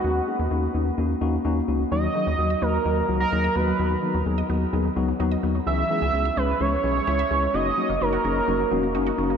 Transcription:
<<
  \new Staff \with { instrumentName = "Analog synth lead" } { \time 4/4 \key dis \phrygian \tempo 4 = 128 fis'4 r2. | dis''4. ais'4~ ais'16 ais'8. b'8~ | b'4 r2. | e''4. b'8 cis''2 |
dis''4 ais'2~ ais'8 r8 | }
  \new Staff \with { instrumentName = "Tine electric piano" } { \time 4/4 \key dis \phrygian <ais cis' dis' fis'>8 <ais cis' dis' gis'>8 <ais cis' dis' fis'>8 <ais cis' dis' fis'>8 <ais cis' dis' fis'>8 <ais cis' dis' fis'>8 <ais cis' dis' fis'>8 <ais cis' dis' fis'>8 | <fis ais dis' fis'>8 <fis ais dis' gis'>8 <fis ais dis' fis'>8 <fis ais dis' fis'>8 <fis ais dis' fis'>8 <fis ais dis' fis'>8 <fis ais dis' gis'>8 <fis ais dis' fis'>8 | <fis b dis' fis'>8 <fis b dis' fis'>8 <fis b dis' gis'>8 <fis b dis' fis'>8 <fis b dis' gis'>8 <fis b dis' fis'>8 <fis b dis' fis'>8 <fis b dis' fis'>8 | <gis cis' e' gis'>8 <gis cis' e' gis'>8 <gis cis' e' gis'>8 <gis cis' e' gis'>8 <gis cis' e' gis'>8 <gis cis' e' gis'>8 <gis cis' e' gis'>8 <gis cis' e' gis'>8 |
<ais cis' dis' fis'>8 <ais cis' dis' fis'>8 <ais cis' dis' fis'>8 <ais cis' dis' gis'>8 <ais cis' dis' fis'>8 <ais cis' dis' fis'>8 <ais cis' dis' fis'>8 <ais cis' dis' fis'>8 | }
  \new Staff \with { instrumentName = "Synth arpeggio sound" } { \clef bass \time 4/4 \key dis \phrygian r1 | dis16 dis16 dis16 fis16 r16 dis''16 ais16 r16 dis16 dis16 dis16 fis16 dis'16 dis''16 ais16 fis16 | dis16 dis16 dis16 fis16 r16 dis''16 b16 r16 dis16 dis16 dis16 fis16 dis'16 dis''16 b16 fis16 | e16 e16 e16 gis16 r16 e''16 cis'16 r16 e16 e16 e16 gis16 e'16 e''16 cis'16 gis16 |
fis16 fis16 fis16 ais16 r16 fis'16 cis'16 r16 fis16 fis16 fis16 ais16 dis'16 fis'16 cis'16 ais16 | }
  \new Staff \with { instrumentName = "Analog synth bass" } { \clef bass \time 4/4 \key dis \phrygian dis,8 r16 dis,16 dis,8 dis,8 dis,8 dis,8 dis,8 cis,8 | dis,8 r16 dis,16 dis,8 dis,8 dis,8 cis,8 dis,8 dis,8 | dis,8 r16 dis,16 dis,8 dis,8 dis,8 cis,8 dis,8 dis,8 | cis,8 r16 cis,16 cis,8 cis,8 cis,8 b,,8 cis,8 cis,8 |
fis,,8 r16 fis,,16 fis,,8 fis,,8 fis,,8 e,,8 fis,,8 fis,,8 | }
>>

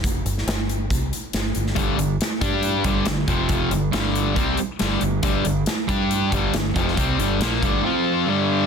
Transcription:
<<
  \new Staff \with { instrumentName = "Distorted electric guitar" } { \clef bass \time 4/4 \key g \minor \tempo 4 = 138 r1 | <g, d g>8 <g, d>8 r8 <g d' g'>4 <g, d g>8 <g, d>8 <f, c f>8~ | <f, c f>8 <g, d>8 <g, d g>4 <c g c'>8 r8 <g, d g>8 <g, d>8 | <g, d g>8 <g, d>8 r8 <g d' g'>4 <g, d g>8 <g, d>8 <f, c f>8 |
<c g c'>8 <g, d g>8 <bes, f bes>8 <g, d g>8 <f c' f'>4 <g, d g>4 | }
  \new Staff \with { instrumentName = "Distorted electric guitar" } { \clef bass \time 4/4 \key g \minor r1 | <g, d g>8 <g, d>8 r8 <g d' g'>4 <g, d g>8 <g, d>8 <f, c f>8~ | <f, c f>8 <g, d>8 <g, d g>4 <c g c'>8 r8 <g, d g>8 <g, d>8 | <g, d g>8 <g, d>8 r8 <g d' g'>4 <g, d g>8 <g, d>8 <f, c f>8 |
<c g c'>8 <g, d g>8 <bes, f bes>8 <g, d g>8 <f c' f'>4 <g, d g>4 | }
  \new Staff \with { instrumentName = "Fingered electric bass" } { \clef bass \time 4/4 \key g \minor f,,8 g,,8 g,,4 c,8 r8 g,,8 g,,8 | g,,8 g,,8 r8 g,4 g,,8 g,,8 f,,8~ | f,,8 g,,8 g,,4 c,8 r8 g,,8 g,,8 | g,,8 g,,8 r8 g,4 g,,8 g,,8 f,,8 |
c,8 g,,8 bes,,8 g,,8 r2 | }
  \new DrumStaff \with { instrumentName = "Drums" } \drummode { \time 4/4 <hh bd>8 hh16 sn16 <hh sn>8 hh8 <hh bd>8 hh8 <hh sn>8 hh16 sn16 | <hh bd>8 hh8 <hh sn>8 <hh bd>8 hh8 <hh bd>8 <hh sn>8 <hh bd>8 | <hh bd>8 hh8 <hh sn>8 hh8 <hh bd>8 hh8 <hh sn>8 hh8 | <hh bd>8 hh8 <hh sn>8 <hh bd>8 hh8 <hh bd>8 <hh sn>8 <hh bd>16 sn16 |
<hh bd>8 hh8 <hh sn>8 <hh bd>8 r4 r4 | }
>>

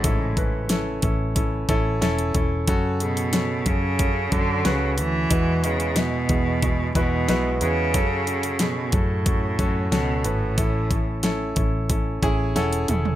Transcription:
<<
  \new Staff \with { instrumentName = "Grand piano" } { \time 4/4 \key a \major \tempo 4 = 91 <cis' e' a'>8 <cis' e' b'>8 <cis' e' a'>8 <cis' e' a'>8 <cis' e' a'>8 <cis' e' a'>8 <cis' e' a'>8 <cis' e' a'>8 | <cis' fis' a'>8 <cis' fis' gis'>8 <cis' fis' a'>8 <cis' fis' a'>8 <cis' fis' a'>8 <cis' fis' a'>8 <cis' fis' b'>8 <cis' fis' a'>8 | <gis b e' fis' b'>8 <gis b e' fis' b'>8 <gis b e' fis' b'>8 <gis b e' fis' gis'>8 <gis b e' fis' gis'>8 <gis b e' fis' b'>8 <gis b e' fis' b'>8 <gis b e' fis' b'>8 | <cis' fis' a'>8 <cis' fis' a'>8 <cis' fis' gis'>8 <cis' fis' a'>8 <cis' fis' a'>8 <cis' fis' a'>8 <cis' fis' a'>8 <cis' fis' b'>8 |
<cis' e' a'>8 <cis' e' a'>8 <cis' e' a'>8 <cis' e' a'>8 <cis' e' a'>8 <cis' e' gis' gis''>8 <cis' e' a' fis''>8 <cis' e' a' e''>8 | }
  \new Staff \with { instrumentName = "Grand piano" } { \clef bass \time 4/4 \key a \major <cis e>4. r2 r8 | cis4. r2 r8 | b,4. r2 r8 | cis4. r2 r8 |
<a, e>4. r2 r8 | }
  \new Staff \with { instrumentName = "Cello" } { \clef bass \time 4/4 \key a \major gis,4 r2. | r8 b,4 cis4 d8 cis8 e8~ | e8 cis8 b,4. b,4 cis8~ | cis4 b,8 a,4. b,8 a,8~ |
a,4 r2. | }
  \new Staff \with { instrumentName = "Fingered electric bass" } { \clef bass \time 4/4 \key a \major a,,4. a,,4 a,,8 e,,8 e,,8 | fis,4. fis,4 fis,8 cis,8 d,8 | e,4. e,4 e,8 b,,8 e,8 | fis,4. fis,4 fis,8 cis,8 gis,,8 |
a,,4. a,,4 a,,8 e,,8 e,,8 | }
  \new DrumStaff \with { instrumentName = "Drums" } \drummode { \time 4/4 <hh bd>8 <hh bd>8 <hh sn>8 <hh bd>8 <hh bd>8 <hh bd>8 <hh sn>16 hh16 <hh bd>8 | <hh bd>8 hh16 hh16 <hh sn>8 <hh bd>8 <hh bd>8 <hh bd>8 <hh sn>8 hh8 | <hh bd>8 hh16 hh16 <hh sn>8 <hh bd>8 <hh bd>8 <hh bd>8 <hh sn>8 hh8 | <hh bd>8 hh16 hh16 <hh sn>8 <hh bd>8 <hh bd>8 <hh bd>8 <hh sn>8 hh8 |
<hh bd>8 <hh bd>8 <hh sn>8 <hh bd>8 <hh bd>8 <hh bd>8 <hh sn>16 hh16 <hh toml>16 tomfh16 | }
>>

